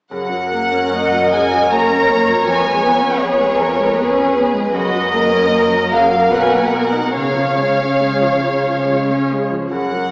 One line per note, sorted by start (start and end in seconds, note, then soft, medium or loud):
0.11 2.50 F#2 soft
0.11 2.44 F#2 soft
0.11 0.31 C#3 soft
0.11 2.44 A#4 soft
0.11 1.29 F#5 soft
0.34 0.53 F#3 soft
0.51 2.50 A#3 soft
0.51 0.73 A#3 soft
0.74 0.93 C#4 soft
0.91 1.13 A#3 soft
0.91 2.08 C#5 soft
0.91 1.69 D#5 soft
1.13 1.33 F#3 soft
1.32 1.53 C#3 soft
1.32 2.51 F#5 soft
1.32 1.72 G#5 medium
1.53 1.72 F#3 soft
1.71 1.91 A#3 soft
1.71 2.51 A#4 soft
1.71 3.22 C#5 soft
1.71 2.48 A#5 medium
1.92 2.11 C#4 soft
2.10 2.30 A#3 soft
2.10 3.20 C#5 soft
2.29 2.48 F#3 soft
2.47 4.76 F2 soft
2.47 4.69 F2 soft
2.47 2.65 F3 soft
2.47 5.47 B4 soft
2.47 3.20 G#5 medium
2.66 2.85 G#3 soft
2.84 3.03 B3 soft
2.84 4.76 B3 soft
3.03 3.22 C#4 soft
3.21 3.40 B3 soft
3.21 3.59 G#4 soft
3.21 4.33 C#5 soft
3.21 4.35 C#5 medium
3.41 3.59 G#3 soft
3.58 3.78 F3 soft
3.58 3.97 A#4 soft
3.58 4.76 G#5 soft
3.78 3.97 G#3 soft
3.96 4.15 B3 soft
3.96 4.74 G#4 soft
3.96 4.76 B4 soft
4.15 4.35 C#4 soft
4.34 4.54 B3 soft
4.34 5.50 C#5 soft
4.54 4.73 G#3 soft
4.73 6.29 F#2 soft
4.73 6.36 F#2 soft
4.73 4.91 C#3 soft
4.73 5.13 F#4 soft
4.73 5.88 D#5 medium
4.93 5.12 F#3 soft
5.12 7.19 A#3 soft
5.12 5.32 A#3 soft
5.12 6.31 A#4 soft
5.33 5.52 C#4 soft
5.51 5.71 A#3 soft
5.51 7.16 A#4 soft
5.51 6.35 C#5 soft
5.71 5.92 F#3 soft
5.91 6.12 C#3 soft
5.91 6.33 F5 soft
5.91 7.19 F#5 soft
6.12 6.32 F#3 soft
6.31 7.15 B2 soft
6.31 7.19 B2 soft
6.31 6.52 F#3 soft
6.31 6.73 B4 soft
6.31 6.41 F#5 soft
6.42 6.50 G#5 soft
6.51 6.75 A#3 soft
6.51 6.58 F#5 soft
6.58 6.66 G#5 soft
6.66 6.74 F#5 soft
6.74 6.95 B3 soft
6.74 7.19 F#4 soft
6.74 7.16 A#4 soft
6.74 7.19 D#5 soft
6.74 6.83 G#5 soft
6.83 7.16 F#5 soft
6.96 7.16 D#4 soft
7.16 9.46 C#3 soft
7.16 9.74 C#3 soft
7.16 7.35 C#3 soft
7.16 9.25 C#5 soft
7.16 9.47 C#5 soft
7.16 9.25 F5 medium
7.37 7.57 F3 soft
7.58 7.79 G#3 soft
7.58 10.11 C#4 soft
7.79 8.00 C#4 soft
7.99 8.21 G#3 soft
7.99 9.29 G#4 soft
8.22 8.43 F3 soft
8.43 8.64 C#3 soft
8.43 10.11 C#6 soft
8.65 8.86 F3 soft
8.86 9.08 G#3 soft
8.86 10.11 C#5 soft
9.09 9.30 C#4 soft
9.30 9.51 G#3 soft
9.30 9.75 G#4 soft
9.52 9.72 F3 soft
9.71 10.11 F#2 soft
9.71 9.91 C#3 soft
9.71 10.11 A#4 soft
9.71 10.11 F#5 medium
9.93 10.11 F#3 soft